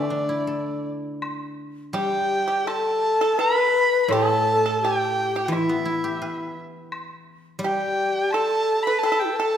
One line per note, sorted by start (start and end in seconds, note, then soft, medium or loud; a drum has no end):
0.00 1.95 D3 medium
0.00 1.40 A3 soft
0.00 0.06 B3 medium
0.00 0.84 D4 medium
0.00 0.86 D5 medium
0.06 0.80 D4 medium
0.10 1.59 D4 soft
0.29 1.77 E4 soft
0.47 1.96 A4 soft
1.22 high woodblock medium
1.93 4.11 G3 medium
1.93 2.46 G4 medium
1.93 2.67 G4 medium
1.93 2.69 G5 loud
2.48 2.66 G4 medium
2.65 3.40 A4 medium
2.65 3.18 A4 medium
2.65 3.42 A5 loud
2.65 high woodblock medium
3.21 3.38 A4 medium
3.38 3.60 A4 medium
3.38 4.12 B4 loud
3.38 4.03 B5 loud
3.38 low woodblock soft
3.60 4.07 B4 medium
4.03 4.13 B5 medium
4.08 6.20 A2 medium
4.08 4.80 A4 medium
4.08 4.86 A5 loud
4.08 high woodblock medium
4.12 4.62 A4 medium
4.66 4.82 A4 medium
4.81 5.55 G4 medium
4.81 5.32 G4 medium
4.81 5.45 G5 loud
5.36 5.52 G4 medium
5.45 7.60 E3 medium
5.45 5.54 G5 medium
5.52 6.53 E4 medium
5.52 6.57 E4 medium
5.52 6.57 E5 medium
5.52 high woodblock soft
5.69 7.09 B3 soft
5.85 7.26 E4 medium
6.04 7.44 G4 medium
6.22 7.62 B4 soft
6.22 low woodblock soft
6.92 high woodblock medium
7.59 9.57 G3 medium
7.59 8.35 G4 medium
7.59 8.32 G5 medium
7.64 8.30 G4 medium
8.30 9.01 A4 medium
8.30 8.82 A4 medium
8.30 8.84 A5 loud
8.30 high woodblock medium
8.83 9.00 B5 loud
8.87 9.03 B4 medium
8.99 9.23 A4 medium
8.99 9.07 A5 loud
9.03 9.11 A4 medium
9.03 9.10 B5 medium
9.03 low woodblock soft
9.09 9.37 A4 medium
9.09 9.21 A5 medium
9.19 9.27 G4 medium
9.19 9.37 G5 medium
9.25 9.31 E4 medium
9.30 9.34 G4 medium
9.30 9.39 B4 medium
9.36 9.57 A4 medium
9.36 9.57 A5 loud
9.40 9.57 A4 medium